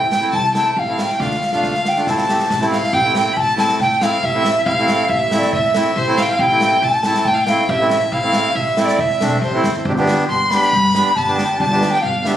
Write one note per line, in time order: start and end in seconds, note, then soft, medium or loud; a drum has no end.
0.00 0.16 A1 medium
0.00 0.36 G5 medium
0.11 0.31 G5 medium
0.11 snare medium
0.21 0.38 A3 medium
0.21 0.38 C4 medium
0.21 0.38 E4 medium
0.32 0.59 C2 medium
0.32 0.52 A5 medium
0.32 0.81 A5 loud
0.32 kick medium
0.44 snare soft
0.54 0.71 A3 medium
0.54 0.71 C4 medium
0.54 0.71 E4 medium
0.54 0.69 G5 medium
0.54 snare loud
0.69 0.78 G5 soft
0.76 1.03 A1 loud
0.76 1.12 F5 medium
0.76 1.02 F5 medium
0.76 kick medium
0.87 1.03 A3 medium
0.87 1.04 C4 medium
0.87 1.04 E4 medium
0.98 1.14 G5 medium
0.98 snare medium
1.09 1.21 G5 medium
1.09 snare medium
1.14 1.25 G5 medium
1.19 1.39 D2 loud
1.19 1.36 A3 medium
1.19 1.36 D4 medium
1.19 1.37 F4 medium
1.19 1.51 F5 medium
1.19 kick medium
1.19 snare soft
1.24 1.54 F5 medium
1.31 snare soft
1.42 snare soft
1.52 1.59 A1 medium
1.52 1.74 A3 medium
1.52 1.74 D4 medium
1.52 1.75 F4 medium
1.52 2.08 F5 medium
1.52 snare soft
1.56 1.90 F5 loud
1.63 1.89 D2 medium
1.63 kick medium
1.63 snare soft
1.74 snare soft
1.85 2.12 G5 medium
1.85 snare medium
1.96 2.06 A3 medium
1.96 2.07 D4 medium
1.96 2.07 F4 medium
1.96 snare soft
2.07 2.33 A1 medium
2.07 2.24 A3 medium
2.07 2.24 C4 medium
2.07 2.25 E4 medium
2.07 2.72 A5 medium
2.07 kick medium
2.07 snare medium
2.18 snare medium
2.28 2.44 A3 medium
2.28 2.45 C4 medium
2.28 2.45 G4 medium
2.28 snare medium
2.39 snare medium
2.50 2.76 A1 loud
2.50 kick medium
2.50 snare medium
2.60 2.77 A3 medium
2.60 2.77 C4 medium
2.60 2.77 E4 loud
2.60 snare medium
2.72 2.95 F5 medium
2.72 2.96 F5 medium
2.72 snare medium
2.83 snare medium
2.92 3.19 A1 loud
2.92 2.98 C4 medium
2.92 2.99 E4 medium
2.92 3.15 G5 loud
2.92 3.14 G5 loud
2.92 kick loud
2.92 snare soft
3.03 3.30 A3 medium
3.03 3.30 C4 medium
3.03 3.31 E4 medium
3.03 snare soft
3.15 3.38 G5 loud
3.15 3.34 G5 medium
3.15 snare loud
3.33 3.62 A1 loud
3.33 3.41 B5 medium
3.37 3.57 A5 loud
3.37 3.58 A5 loud
3.37 kick medium
3.56 3.79 A3 medium
3.56 3.79 C4 medium
3.56 3.79 E4 medium
3.56 3.78 A5 loud
3.56 3.79 A5 medium
3.56 snare medium
3.69 snare medium
3.80 4.06 A2 medium
3.80 4.04 G5 loud
3.80 4.01 G5 medium
3.80 kick medium
3.80 snare soft
3.91 snare soft
4.01 4.18 A3 medium
4.01 4.18 C4 medium
4.01 4.18 E4 medium
4.01 4.26 F5 loud
4.01 4.25 F5 loud
4.01 snare loud
4.13 snare soft
4.23 4.49 A1 loud
4.23 4.67 E5 loud
4.23 4.65 E5 loud
4.23 kick medium
4.23 snare soft
4.33 4.50 A3 medium
4.33 4.50 C4 medium
4.33 4.51 E4 medium
4.45 snare medium
4.65 4.92 A1 loud
4.65 4.71 C4 medium
4.65 4.72 E4 medium
4.65 5.11 F5 medium
4.65 5.11 F5 loud
4.65 kick loud
4.77 5.05 A3 medium
4.77 5.05 C4 medium
4.77 5.05 E4 loud
4.77 snare soft
4.88 snare medium
4.99 snare soft
5.09 5.35 A1 loud
5.09 5.53 E5 loud
5.09 5.40 E5 loud
5.09 kick medium
5.30 5.52 A3 medium
5.30 5.53 C4 medium
5.30 5.53 E4 medium
5.30 snare medium
5.38 5.53 D5 medium
5.38 snare medium
5.53 5.79 A2 medium
5.53 5.99 E5 medium
5.53 5.78 E5 loud
5.53 kick medium
5.64 snare soft
5.75 5.91 A3 medium
5.75 5.91 C4 medium
5.75 5.91 E4 medium
5.75 snare loud
5.85 snare soft
5.96 6.22 A1 loud
5.96 6.17 C5 medium
5.96 6.19 C5 loud
5.96 kick medium
5.96 snare soft
6.06 6.23 A3 medium
6.06 6.23 C4 medium
6.06 6.24 E4 medium
6.17 6.23 F5 loud
6.17 6.38 F5 loud
6.17 snare medium
6.22 6.32 G5 medium
6.28 6.42 F5 medium
6.28 snare soft
6.38 6.65 A1 loud
6.38 6.45 C4 medium
6.38 6.46 E4 medium
6.38 6.84 G5 loud
6.38 6.85 G5 loud
6.38 kick loud
6.50 6.77 A3 medium
6.50 6.78 C4 medium
6.50 6.78 E4 medium
6.50 snare soft
6.61 snare medium
6.82 7.08 A1 loud
6.82 7.27 A5 loud
6.82 7.29 A5 medium
6.82 kick medium
6.93 snare soft
7.03 7.26 A3 medium
7.03 7.26 C4 medium
7.03 7.27 E4 medium
7.03 snare medium
7.14 snare medium
7.25 7.51 A2 medium
7.25 7.47 G5 loud
7.25 7.36 G5 medium
7.25 kick loud
7.34 7.42 F5 medium
7.34 snare soft
7.40 7.71 G5 medium
7.47 7.64 A3 medium
7.47 7.64 C4 medium
7.47 7.64 E4 medium
7.47 7.71 F5 loud
7.47 snare loud
7.58 snare soft
7.68 7.95 A1 loud
7.68 7.90 E5 medium
7.68 8.15 E5 loud
7.68 kick medium
7.68 snare soft
7.80 7.96 A3 medium
7.80 7.97 C4 medium
7.80 7.97 E4 medium
7.90 8.15 E5 medium
7.90 snare medium
8.01 snare soft
8.11 8.38 A1 loud
8.11 8.17 C4 medium
8.11 8.18 E4 medium
8.11 8.57 F5 loud
8.11 8.56 F5 loud
8.11 kick loud
8.23 8.50 A3 medium
8.23 8.50 C4 medium
8.23 8.51 E4 medium
8.33 snare medium
8.44 snare soft
8.55 8.81 A1 medium
8.55 8.83 E5 medium
8.55 8.86 E5 medium
8.55 kick medium
8.66 snare soft
8.77 8.99 A3 medium
8.77 8.99 C4 medium
8.77 9.00 E4 medium
8.77 snare medium
8.84 9.01 D5 medium
8.88 snare medium
8.98 9.12 A2 medium
8.98 9.43 E5 medium
8.98 kick medium
9.10 snare soft
9.20 9.40 B1 medium
9.20 9.37 A3 medium
9.20 9.37 C4 medium
9.20 9.37 D4 loud
9.20 snare loud
9.31 snare soft
9.42 9.62 A1 loud
9.42 9.83 C5 medium
9.42 kick medium
9.42 snare soft
9.53 9.70 A3 medium
9.53 9.70 C4 medium
9.53 9.70 E4 medium
9.64 9.83 G1 medium
9.64 snare medium
9.85 10.11 G1 loud
9.85 9.92 D4 medium
9.85 9.93 G4 medium
9.85 kick medium
9.96 10.24 B3 loud
9.96 10.24 D4 medium
9.96 10.25 G4 loud
9.96 snare soft
10.07 snare medium
10.18 snare soft
10.28 10.55 G1 medium
10.28 10.51 C6 loud
10.28 10.52 C6 medium
10.28 kick medium
10.50 10.73 B3 medium
10.50 10.74 D4 medium
10.50 10.74 G4 medium
10.50 11.17 B5 loud
10.50 11.19 B5 loud
10.50 snare medium
10.62 snare medium
10.73 10.99 G2 loud
10.73 kick medium
10.73 snare soft
10.84 snare soft
10.95 11.11 B3 medium
10.95 11.12 D4 medium
10.95 11.12 G4 medium
10.95 snare medium
11.16 11.42 G1 loud
11.16 11.37 A5 loud
11.16 11.60 A5 medium
11.16 kick medium
11.16 snare soft
11.27 11.43 B3 medium
11.27 11.44 D4 medium
11.27 11.44 G4 medium
11.36 11.59 G5 medium
11.36 snare medium
11.58 11.86 G1 loud
11.58 11.65 D4 medium
11.58 11.65 G4 medium
11.58 11.92 A5 loud
11.58 kick loud
11.58 snare soft
11.62 11.91 A5 loud
11.70 11.97 B3 medium
11.70 11.98 D4 medium
11.70 11.98 G4 medium
11.70 snare soft
11.82 snare medium
11.91 12.03 G5 loud
11.91 12.03 G5 medium
11.91 snare soft
12.02 12.29 G1 medium
12.02 12.26 F5 medium
12.02 12.28 F5 medium
12.02 kick medium
12.25 12.37 B3 medium
12.25 12.37 D4 medium
12.25 12.37 G4 medium
12.25 12.37 E5 medium
12.25 snare medium